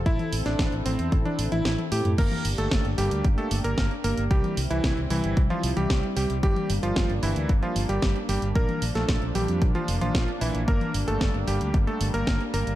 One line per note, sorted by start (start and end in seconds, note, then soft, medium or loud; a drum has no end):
0.00 2.14 A4 medium
0.06 0.16 A1 loud
0.06 2.16 C4 medium
0.06 0.33 E4 loud
0.06 2.16 E4 medium
0.06 kick loud
0.06 closed hi-hat medium
0.19 closed hi-hat soft
0.19 high tom medium
0.33 0.42 A1 medium
0.33 open hi-hat loud
0.46 0.55 A1 medium
0.46 0.73 D4 medium
0.46 snare soft
0.46 closed hi-hat medium
0.59 0.69 A1 loud
0.59 kick loud
0.59 snare loud
0.59 closed hi-hat medium
0.72 0.82 A1 medium
0.72 closed hi-hat soft
0.85 0.95 A1 medium
0.85 1.12 C4 medium
0.85 open hi-hat loud
0.85 high tom medium
0.99 1.08 E2 medium
0.99 closed hi-hat medium
1.12 1.22 A1 medium
1.12 kick loud
1.12 closed hi-hat medium
1.25 1.43 D4 medium
1.25 closed hi-hat soft
1.25 high tom medium
1.39 1.48 A1 medium
1.39 open hi-hat loud
1.52 1.62 A1 medium
1.52 1.79 E4 medium
1.52 closed hi-hat medium
1.52 high tom medium
1.65 1.75 A1 loud
1.65 snare loud
1.65 closed hi-hat medium
1.65 high tom medium
1.79 closed hi-hat soft
1.79 high tom medium
1.92 2.01 A2 loud
1.92 2.10 G4 medium
1.92 open hi-hat loud
2.05 2.15 A2 medium
2.05 closed hi-hat soft
2.05 mid tom medium
2.18 2.28 G1 loud
2.18 2.45 A#3 medium
2.18 4.29 A#3 medium
2.18 4.29 D4 medium
2.18 4.29 G4 medium
2.18 2.45 A#4 medium
2.18 kick loud
2.18 closed hi-hat medium
2.18 crash loud
2.32 closed hi-hat soft
2.32 high tom medium
2.45 2.54 G1 medium
2.45 open hi-hat loud
2.58 2.68 G1 medium
2.58 2.85 A3 medium
2.58 2.85 A4 medium
2.58 closed hi-hat medium
2.71 2.81 G1 medium
2.71 kick loud
2.71 snare loud
2.71 closed hi-hat medium
2.85 2.94 G1 medium
2.85 closed hi-hat soft
2.98 3.08 G1 loud
2.98 3.25 G3 medium
2.98 3.25 G4 loud
2.98 open hi-hat loud
3.11 3.21 D2 medium
3.11 closed hi-hat medium
3.25 3.34 G1 loud
3.25 kick loud
3.25 closed hi-hat medium
3.38 3.56 A3 medium
3.38 3.56 A4 medium
3.38 closed hi-hat soft
3.51 3.61 G1 medium
3.51 open hi-hat loud
3.64 3.74 G1 medium
3.64 3.91 A#3 medium
3.64 3.91 A#4 loud
3.64 closed hi-hat medium
3.78 3.87 G1 loud
3.78 kick loud
3.78 snare loud
3.78 closed hi-hat medium
3.91 closed hi-hat soft
4.04 4.14 G1 loud
4.04 4.22 A#3 medium
4.04 4.22 A#4 medium
4.04 open hi-hat loud
4.17 4.27 G1 medium
4.17 closed hi-hat medium
4.31 4.40 C2 loud
4.31 4.58 G3 medium
4.31 8.52 G3 medium
4.31 6.41 C4 medium
4.31 6.41 E4 medium
4.31 4.58 G4 medium
4.31 kick loud
4.31 closed hi-hat medium
4.44 closed hi-hat soft
4.44 high tom medium
4.57 4.67 C2 loud
4.57 open hi-hat loud
4.70 4.80 C2 medium
4.70 4.97 E3 medium
4.70 4.97 E4 medium
4.70 closed hi-hat medium
4.84 4.93 C2 loud
4.84 kick loud
4.84 snare loud
4.84 closed hi-hat medium
4.97 5.07 C2 medium
4.97 closed hi-hat soft
5.10 5.20 C2 loud
5.10 5.37 E3 medium
5.10 5.37 E4 medium
5.10 open hi-hat loud
5.10 high tom medium
5.24 5.33 G1 medium
5.24 closed hi-hat medium
5.37 5.46 C2 loud
5.37 kick loud
5.37 closed hi-hat medium
5.50 5.68 F3 medium
5.50 5.68 F4 medium
5.50 closed hi-hat soft
5.50 high tom medium
5.63 5.73 C2 medium
5.63 open hi-hat loud
5.77 5.86 C2 medium
5.77 6.04 G3 medium
5.77 6.04 G4 medium
5.77 closed hi-hat medium
5.77 high tom medium
5.90 6.00 C2 loud
5.90 kick loud
5.90 snare loud
5.90 closed hi-hat medium
6.03 closed hi-hat soft
6.17 6.26 C2 loud
6.17 6.34 G3 medium
6.17 6.34 G4 medium
6.17 open hi-hat loud
6.30 6.39 C2 medium
6.30 closed hi-hat medium
6.43 6.53 G1 loud
6.43 6.70 G3 medium
6.43 8.53 A#3 medium
6.43 12.75 D4 medium
6.43 6.70 G4 loud
6.43 kick loud
6.43 closed hi-hat medium
6.56 closed hi-hat soft
6.56 high tom medium
6.70 6.79 G1 loud
6.70 open hi-hat loud
6.83 6.93 G1 medium
6.83 7.10 F3 medium
6.83 7.10 F4 medium
6.83 closed hi-hat medium
6.96 7.06 G1 loud
6.96 kick loud
6.96 snare loud
6.96 closed hi-hat medium
7.09 7.19 G1 medium
7.09 closed hi-hat soft
7.23 7.32 G1 medium
7.23 7.50 E3 medium
7.23 7.50 E4 loud
7.23 open hi-hat loud
7.36 7.46 D2 medium
7.36 closed hi-hat medium
7.49 7.59 G1 medium
7.49 kick loud
7.49 closed hi-hat medium
7.63 7.80 F3 medium
7.63 7.80 F4 medium
7.63 closed hi-hat soft
7.76 7.85 G1 loud
7.76 open hi-hat loud
7.89 7.99 G1 medium
7.89 8.16 G3 medium
7.89 8.16 G4 medium
7.89 closed hi-hat medium
8.02 8.12 G1 loud
8.02 kick loud
8.02 snare loud
8.02 closed hi-hat medium
8.16 closed hi-hat soft
8.29 8.38 G1 loud
8.29 8.47 G3 medium
8.29 8.47 G4 medium
8.29 open hi-hat loud
8.42 8.52 G1 medium
8.42 closed hi-hat medium
8.55 8.65 A#1 loud
8.55 10.66 F3 medium
8.55 12.75 A#3 medium
8.55 8.82 A#3 medium
8.55 8.82 A#4 loud
8.55 kick loud
8.55 closed hi-hat medium
8.69 closed hi-hat soft
8.69 high tom medium
8.82 8.92 A#1 medium
8.82 open hi-hat loud
8.95 9.05 A#1 medium
8.95 9.22 A3 medium
8.95 9.22 A4 medium
8.95 snare soft
8.95 closed hi-hat medium
9.09 9.18 A#1 loud
9.09 kick loud
9.09 snare loud
9.09 closed hi-hat medium
9.22 9.31 A#1 medium
9.22 closed hi-hat soft
9.35 9.45 A#1 medium
9.35 9.62 G3 medium
9.35 9.62 G4 loud
9.35 open hi-hat loud
9.35 high tom medium
9.48 9.58 F2 medium
9.48 closed hi-hat medium
9.62 9.71 A#1 loud
9.62 kick loud
9.62 closed hi-hat medium
9.75 9.93 F3 medium
9.75 9.93 F4 medium
9.75 closed hi-hat soft
9.75 high tom medium
9.88 9.98 F1 medium
9.88 open hi-hat loud
10.01 10.11 A#1 medium
10.01 10.28 F3 medium
10.01 10.28 F4 medium
10.01 closed hi-hat medium
10.01 high tom medium
10.15 10.24 A#1 loud
10.15 kick loud
10.15 snare loud
10.15 closed hi-hat medium
10.28 closed hi-hat soft
10.41 10.51 A#1 medium
10.41 10.59 E3 medium
10.41 10.59 E4 medium
10.41 open hi-hat loud
10.55 10.64 A#1 medium
10.55 closed hi-hat soft
10.68 10.77 G1 loud
10.68 12.75 G3 medium
10.68 10.95 A#3 medium
10.68 10.95 A#4 loud
10.68 kick loud
10.68 closed hi-hat medium
10.81 closed hi-hat soft
10.81 high tom medium
10.94 11.04 G1 loud
10.94 open hi-hat loud
11.08 11.17 G1 medium
11.08 11.35 A3 medium
11.08 11.35 A4 loud
11.08 closed hi-hat medium
11.21 11.31 G1 loud
11.21 kick loud
11.21 snare loud
11.21 closed hi-hat soft
11.34 11.44 G1 medium
11.34 closed hi-hat soft
11.47 11.57 G1 loud
11.47 11.74 G3 medium
11.47 11.74 G4 medium
11.47 open hi-hat loud
11.61 11.70 D2 medium
11.61 closed hi-hat medium
11.74 11.84 G1 loud
11.74 kick loud
11.74 closed hi-hat medium
11.87 12.05 A3 medium
11.87 12.05 A4 medium
11.87 closed hi-hat soft
12.01 12.10 G1 loud
12.01 open hi-hat loud
12.14 12.23 G1 medium
12.14 12.41 A#3 medium
12.14 12.41 A#4 loud
12.14 closed hi-hat soft
12.27 12.37 G1 loud
12.27 kick loud
12.27 snare loud
12.27 closed hi-hat medium
12.41 closed hi-hat soft
12.54 12.63 G1 medium
12.54 12.72 A#3 medium
12.54 12.72 A#4 medium
12.54 open hi-hat loud
12.67 12.75 G1 medium
12.67 closed hi-hat soft